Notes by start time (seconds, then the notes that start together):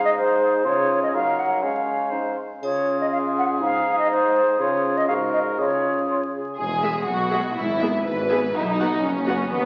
Already playing: G#2 D#4 G#4
0.05 D#5
0.17 C5
0.64 C#3 F4 G#4 C#5
1.03 D#5
1.14 F#3 D#4 A#4 F5
1.39 F#5
1.63 G#3 C#4 C#5 F5
2.12 D#4 C5
2.62 C#3 F4 G#4 C#5, triangle
3.01 D#5
3.12 F5
3.39 F#5
3.61 G#2 D#4 F5
3.99 D#5
4.11 C5
4.59 C#3 F4 G#4 C#5
4.97 D#5
5.08 G#2 F#4 A#4 F5
5.33 D#5
5.58 C#3 F4 G#4 C#5
6.11 F4
6.34 G#4
6.58 E1 E2 G#4
6.83 G#3 G#4 E5
7.08 B1 B2 F#4
7.32 G#3 G#4 E5
7.57 G#1 G#2 E4
7.81 B3 G#4 E5
8.06 G#1 G#2 B4
8.30 B3 G#4 E5
8.55 B1 B2 D#4
8.62 E4
8.69 D#4
8.80 B3 F#4 F#5
9.03 F#1 F#2 C#4
9.27 B3 F#4 F#5
9.51 D#2 D#3 B3